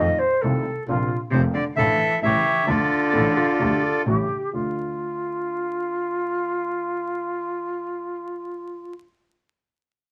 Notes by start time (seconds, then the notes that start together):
Already playing: F2 D#5
0.00 F2 D#3 F3 A3 C4 F4
0.19 C5
0.42 C2 C3 D#3 A3 C4 F4 A4
0.87 A#1 A#2 C3 F3 A#3 F4
1.31 F1 F2 C3 F3 A#3 F4 C5
1.54 D3 D5
1.75 A1 A2 D3 E3 F3 A3 F4 A4 E5
2.21 A1 A2 C#3 E3 G3 A3 E4 G4 C#5 E5
2.66 D2 D3 F3 A3 F4 A4 D5
3.13 A1 A2 D3 F3 A3 F4 A4
3.37 F4
3.59 D2 D3 F3 A3 F4 G4
3.84 A4
4.06 A1 A2 C#3 G3 A3 E4 G4
4.53 D2 A3 D4 F4